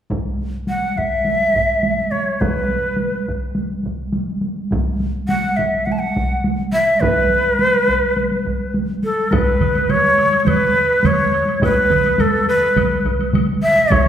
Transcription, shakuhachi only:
0.69 F#5
0.98 E5
2.11 C#5
2.41 B4
5.28 F#5
5.57 E5
5.86 F#5
5.92 A5
5.99 F#5
6.73 E5
7.00 B4
9.04 A4
9.32 B4
9.90 C#5
10.40 C#5
10.47 B4
11.06 C#5
11.64 B4
12.20 A4
12.49 B4
13.63 E5
13.92 C#5

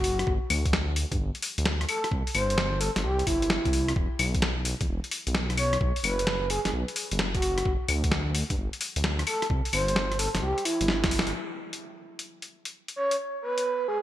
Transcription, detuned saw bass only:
Already playing: F#1
0.27 G1
0.50 D2
1.12 G2
1.19 G1
1.58 D2
2.12 C2
2.35 G1
2.96 G1
3.04 C2
3.27 G1
3.65 C2
3.96 E1
4.19 B1
4.81 E2
4.88 E1
5.27 B1
5.81 B1
6.04 F#1
6.66 F#1
6.73 B1
7.12 F#1
7.65 G1
7.88 D2
8.50 G2
8.58 G1
8.96 D2
9.50 C2
9.73 G1
10.35 G1
10.42 C2
10.81 G1
11.04 G1
11.12 G1
11.27 G1

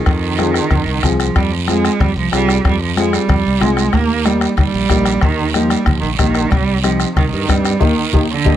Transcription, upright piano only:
0.38 C4 F4 G#4
1.03 C4 F4 G#4
1.68 C4 F4 G#4
2.32 C4 F4 G#4
2.97 C4 F4 G#4
3.60 C4 F4 G#4
4.25 A#3 D#4 G4
4.90 A#3 D#4 G4
5.55 A#3 D#4 G4
6.19 A#3 D#4 G4
6.83 C4 D#4 G4
7.48 C4 D#4 G4
7.80 A#3 D#4 G4
8.14 A#3 D#4 G4
8.46 A#3 D#4 G4

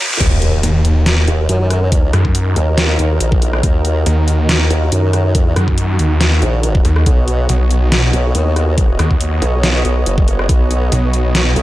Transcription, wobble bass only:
0.21 D#2
1.28 D#2
1.49 F#2
2.56 D#2
2.99 D#2
3.20 A#1
3.63 D#2
4.70 D#2
4.92 F#2
5.36 F2
6.42 A#1
7.06 B1
8.13 B1
8.35 D#2
9.42 B1
9.85 B1
10.06 F#1
10.49 B1
11.56 B1

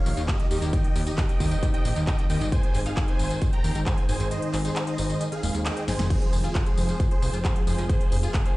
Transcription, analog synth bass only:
0.06 A#1
0.17 D#2
0.51 D#2
0.62 D#2
0.95 D#2
1.40 D#2
1.85 A#1
1.96 D#2
2.30 D#2
2.41 G#1
2.74 G#1
3.19 G#1
3.64 D#2
3.75 G#1
4.09 G#1
4.20 G#1
4.54 G#1
4.98 G#1
5.43 D#1
5.54 D#2
5.88 G#1
5.99 F1
6.33 F1
6.78 F1
7.22 C2
7.33 F1
7.67 F1
7.78 F1
8.12 F1

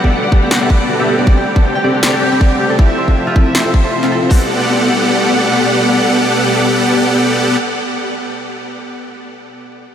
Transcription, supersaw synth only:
0.04 B3 G4 A4 D5 E5
0.13 B3 G4 A4 D5 F#5
0.32 B3 G4 A4 D5 F#5
0.42 B3 G4 A4 D5 E5
0.51 B3 G4 A4 D5 F#5
0.61 B3 G4 A4 D5 E5
0.80 B3 G4 A4 D5 A5
0.99 B3 G4 A4 D5 E5
1.18 B3 G4 A4 D5 G5
1.27 C4 G4 A4 D5 G5
1.56 C4 G4 A4 D5 F#5
1.65 C4 G4 A4 D5 G5
1.84 C4 G4 A4 D5 G5
1.94 C4 G4 A4 D5 F#5
2.03 C4 G4 A4 D5 G5
2.13 C4 G4 A4 D5 F#5
2.32 C4 G4 A4 D5 B5
2.51 C4 G4 A4 D5 F#5
2.70 C4 G4 A4 D5 A5
2.79 C4 F4 A4 E5
3.08 C4 F4 A4 E5 G5
3.17 C4 F4 A4 E5 A5
3.36 C4 F4 A4 E5 A5
3.46 C4 F4 A4 E5 G5
3.55 C4 F4 A4 E5 A5
3.65 C4 F4 A4 E5 G5
3.84 C4 F4 A4 E5 A5
4.03 C4 F4 A4 E5 G5
4.22 C4 F4 A4 E5 C6
4.31 B3 G4 A4 D5 F#5

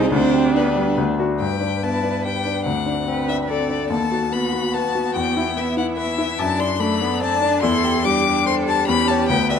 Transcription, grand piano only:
Already playing: C2 D#4 G#4
0.11 D2
0.33 G4
0.55 D4
0.76 G3
0.98 D2
1.19 D4 F#4
1.40 G2
1.60 D4
1.83 B3
2.03 D4
2.25 G4
2.45 D4
2.66 D2
2.86 D4
3.06 C4
3.28 D4
3.49 A4
3.69 D4
3.90 D#2
4.12 F#4
4.32 B3
4.53 F#4
4.74 B4
4.95 F#4
5.15 E2
5.37 E4
5.57 B3
5.77 E4
5.97 B4
6.18 E4
6.39 F#2
6.59 D4
6.80 A3
7.01 D4
7.21 D5
7.42 D4
7.63 E2
7.83 G4
8.05 G3
8.25 G4
8.46 C5
8.67 G4
8.88 E2
9.09 G4 C#5
9.29 D2
9.50 G4 D5

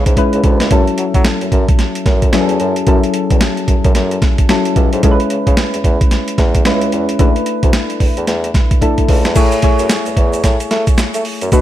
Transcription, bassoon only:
0.06 G#2
0.34 C#2
0.44 D2
0.60 C#2
0.71 F#2
0.98 F#3
1.14 F#3
1.41 F#2
1.52 F#2
2.06 F#2
2.33 E2
2.60 F#2
2.87 F#2
3.31 E2
3.68 F#2
3.85 F#2
3.95 F#2
4.76 C#2
4.93 G#2
5.03 C#2
5.31 C#3
5.47 C#3
5.74 E2
5.84 E2
6.38 E2
6.65 C#2
6.93 E2
7.19 E2
7.63 D2
8.00 E2
8.17 E2
8.28 E2
9.09 C#2
9.25 E2
9.36 A2
9.79 F#2
10.06 E2
10.17 E2
10.44 A2
10.71 A3
11.14 A3
11.42 F#2
11.52 B2

